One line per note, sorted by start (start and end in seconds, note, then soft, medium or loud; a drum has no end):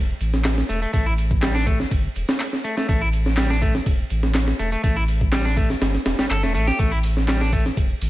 0.00 0.13 E1 medium
0.08 shaker soft
0.20 0.63 A1 loud
0.20 ride medium
0.20 shaker medium
0.33 snare soft
0.33 shaker soft
0.44 snare loud
0.44 clap loud
0.44 ride medium
0.44 shaker soft
0.57 snare medium
0.57 shaker soft
0.69 0.86 E1 medium
0.69 0.80 A3 medium
0.69 ride medium
0.69 shaker medium
0.82 0.92 A3 medium
0.82 ride soft
0.82 shaker soft
0.93 1.85 A1 loud
0.93 1.05 A3 medium
0.93 kick loud
0.93 ride medium
0.93 shaker soft
1.06 1.12 E4 medium
1.06 shaker soft
1.18 ride medium
1.18 shaker medium
1.31 kick medium
1.31 shaker soft
1.42 1.54 G3 medium
1.42 snare loud
1.42 clap loud
1.42 ride medium
1.42 shaker soft
1.55 1.65 D4 medium
1.55 snare soft
1.55 shaker soft
1.66 1.78 A3 medium
1.66 kick loud
1.66 ride medium
1.66 shaker medium
1.80 snare soft
1.80 shaker soft
1.91 2.08 G1 loud
1.91 kick loud
1.91 ride medium
1.91 shaker soft
2.04 shaker soft
2.15 2.24 E1 medium
2.15 ride medium
2.15 shaker medium
2.28 snare loud
2.28 shaker soft
2.40 clap loud
2.40 ride medium
2.40 shaker soft
2.52 snare soft
2.52 shaker soft
2.64 2.76 A3 medium
2.64 ride medium
2.64 shaker medium
2.77 2.87 A3 medium
2.77 snare soft
2.77 shaker soft
2.88 3.80 A1 loud
2.88 3.01 A3 medium
2.88 kick loud
2.88 ride medium
2.88 shaker soft
3.01 3.08 E4 medium
3.01 shaker soft
3.12 ride medium
3.12 shaker medium
3.25 snare soft
3.25 shaker soft
3.37 3.50 G3 medium
3.37 snare loud
3.37 clap loud
3.37 ride medium
3.37 shaker soft
3.50 3.61 D4 medium
3.50 snare soft
3.50 shaker soft
3.61 3.73 A3 medium
3.61 kick loud
3.61 ride medium
3.61 shaker medium
3.74 snare soft
3.74 shaker soft
3.86 4.03 E1 medium
3.86 kick loud
3.86 ride loud
3.86 shaker soft
3.99 shaker soft
4.10 4.53 A1 loud
4.10 ride medium
4.10 shaker medium
4.23 snare soft
4.23 shaker soft
4.34 snare loud
4.34 clap loud
4.34 ride medium
4.34 shaker soft
4.47 snare medium
4.47 shaker soft
4.59 4.76 E1 medium
4.59 4.71 A3 medium
4.59 ride medium
4.59 shaker medium
4.71 4.82 A3 medium
4.71 ride soft
4.71 shaker soft
4.83 5.75 A1 loud
4.83 4.96 A3 medium
4.83 kick loud
4.83 ride medium
4.83 shaker soft
4.96 5.03 E4 medium
4.96 shaker soft
5.08 ride medium
5.08 shaker medium
5.21 kick medium
5.21 shaker soft
5.32 5.44 G3 medium
5.32 snare loud
5.32 clap loud
5.32 ride medium
5.32 shaker soft
5.45 5.56 D4 medium
5.45 snare soft
5.45 shaker soft
5.57 5.68 A3 medium
5.57 kick loud
5.57 ride medium
5.57 shaker medium
5.70 snare soft
5.70 shaker soft
5.81 5.98 G1 loud
5.81 snare loud
5.81 ride medium
5.81 shaker soft
5.94 snare soft
5.94 shaker soft
6.06 6.14 E1 medium
6.06 snare loud
6.06 ride medium
6.06 shaker medium
6.18 6.28 G1 soft
6.18 6.25 G3 medium
6.18 snare loud
6.18 shaker soft
6.30 6.44 G1 loud
6.30 6.42 A4 loud
6.30 clap loud
6.30 ride medium
6.30 shaker soft
6.43 6.56 E1 loud
6.43 6.53 A3 medium
6.43 snare soft
6.43 shaker soft
6.54 6.71 A1 loud
6.54 6.66 A3 medium
6.54 ride medium
6.54 shaker medium
6.67 6.78 G4 loud
6.67 snare soft
6.67 shaker soft
6.79 7.71 A1 loud
6.79 6.91 A3 medium
6.79 kick loud
6.79 ride medium
6.79 shaker soft
6.92 6.98 E4 medium
6.92 shaker soft
7.03 open hi-hat medium
7.03 ride medium
7.03 shaker medium
7.17 snare soft
7.17 shaker soft
7.28 7.40 G3 medium
7.28 snare loud
7.28 clap loud
7.28 ride medium
7.28 shaker soft
7.41 7.51 D4 medium
7.41 snare soft
7.41 shaker soft
7.52 7.64 A3 medium
7.52 kick loud
7.52 open hi-hat medium
7.52 ride medium
7.52 shaker medium
7.65 snare soft
7.65 shaker soft
7.77 7.94 E1 medium
7.77 kick loud
7.77 ride medium
7.77 shaker soft
7.90 shaker soft
8.01 8.10 A1 loud
8.01 open hi-hat medium
8.01 ride medium
8.01 shaker medium